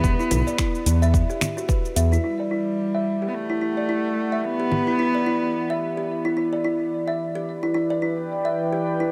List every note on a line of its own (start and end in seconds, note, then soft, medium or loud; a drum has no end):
0.00 0.15 E1 loud
0.00 1.69 B3 loud
0.00 kick loud
0.04 shaker soft
0.19 0.30 E4 medium
0.19 shaker soft
0.31 0.42 B1 loud
0.31 0.46 E4 medium
0.31 closed hi-hat loud
0.31 low conga medium
0.31 shaker medium
0.47 0.58 D5 medium
0.47 shaker soft
0.58 1.01 E4 medium
0.58 finger snap medium
0.58 kick medium
0.58 shaker soft
0.75 shaker soft
0.86 1.22 E2 loud
0.86 closed hi-hat loud
0.86 shaker medium
1.02 1.13 E5 medium
1.02 shaker soft
1.14 kick loud
1.14 shaker soft
1.30 1.41 G4 medium
1.30 shaker soft
1.41 finger snap medium
1.41 closed hi-hat medium
1.41 low conga medium
1.41 shaker medium
1.57 1.68 F#4 medium
1.57 shaker soft
1.68 1.83 B4 medium
1.68 kick medium
1.68 shaker soft
1.85 shaker soft
1.96 2.17 E2 medium
1.96 2.11 E5 medium
1.96 closed hi-hat medium
1.96 shaker medium
2.12 2.23 E4 medium
2.12 shaker soft
2.23 9.12 E3 medium
2.23 3.29 G3 medium
2.23 2.39 E4 medium
2.40 2.50 D5 medium
2.51 2.93 E4 medium
2.63 9.12 E4 medium
2.63 7.71 G4 medium
2.63 9.12 D5 medium
2.67 6.64 F#5 medium
2.95 3.06 E5 medium
3.22 3.33 G4 medium
3.28 3.36 B3 medium
3.34 4.46 A3 medium
3.50 3.60 E4 medium
3.61 3.76 E4 medium
3.77 3.88 D5 medium
3.89 4.31 E4 medium
4.32 4.43 E5 medium
4.44 6.37 B3 loud
4.60 4.71 G4 medium
4.72 low conga soft
4.87 4.98 E4 medium
4.99 5.14 E4 medium
5.15 5.25 D5 medium
5.26 5.68 E4 medium
5.70 5.81 E5 medium
5.97 6.09 G4 medium
6.25 6.36 E4 medium
6.37 6.52 E4 medium
6.53 6.63 D5 medium
6.64 7.06 E4 medium
7.08 7.19 E5 medium
7.25 9.12 B4 medium
7.35 7.46 G4 medium
7.63 7.73 E4 medium
7.74 7.89 E4 medium
7.90 8.01 D5 medium
8.00 8.44 E4 medium
8.00 9.12 G5 medium
8.45 8.56 E5 medium
8.73 8.84 G4 medium
9.00 9.11 E4 medium